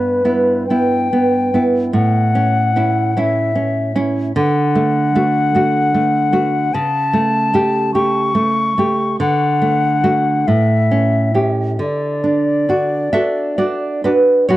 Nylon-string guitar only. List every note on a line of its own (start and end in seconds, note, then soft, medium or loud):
0.00 1.91 G2 medium
0.00 0.21 B3 soft
0.25 0.65 B3 soft
0.25 0.65 E4 soft
0.70 1.08 B3 soft
0.70 1.08 E4 soft
1.13 1.50 B3 soft
1.54 1.90 B3 soft
1.54 1.91 E4 soft
1.93 4.31 A2 medium
2.35 2.73 C#4 soft
2.76 3.13 C#4 soft
2.76 3.13 E4 soft
3.17 3.53 C#4 soft
3.17 3.53 E4 soft
3.56 3.92 C#4 soft
3.96 4.31 C#4 soft
3.96 4.32 E4 soft
4.36 6.70 D3 medium
4.75 5.11 A3 medium
5.15 5.51 A3 soft
5.15 5.51 F#4 medium
5.55 5.90 A3 soft
5.55 5.91 F#4 soft
5.94 6.30 A3 soft
6.33 6.69 A3 soft
6.33 6.69 F#4 soft
6.74 9.16 C#3 medium
7.13 7.50 A3 medium
7.54 7.90 A3 medium
7.54 7.91 G4 medium
7.95 8.32 A3 soft
7.95 8.32 G4 soft
8.35 8.73 A3 soft
8.78 9.16 A3 soft
8.78 9.16 G4 soft
9.20 10.44 D3 medium
9.62 10.00 A3 soft
10.04 10.44 A3 soft
10.04 10.44 F#4 soft
10.48 11.76 A2 medium
10.91 11.31 C#4 soft
11.35 11.76 C#4 soft
11.35 11.76 G4 soft
11.79 13.12 D3 soft
12.24 12.67 D4 soft
12.69 13.11 D4 soft
12.69 13.12 F#4 soft
13.13 13.56 D4 soft
13.13 13.56 F#4 soft
13.13 13.57 A4 medium
13.13 13.57 E5 medium
13.58 14.02 D4 soft
13.58 14.02 F#4 soft
13.58 14.03 D5 medium
14.04 14.48 D4 soft
14.04 14.47 F#4 soft
14.04 14.48 B4 medium
14.49 14.57 F#2 medium
14.49 14.57 F#4 medium
14.49 14.57 C#5 medium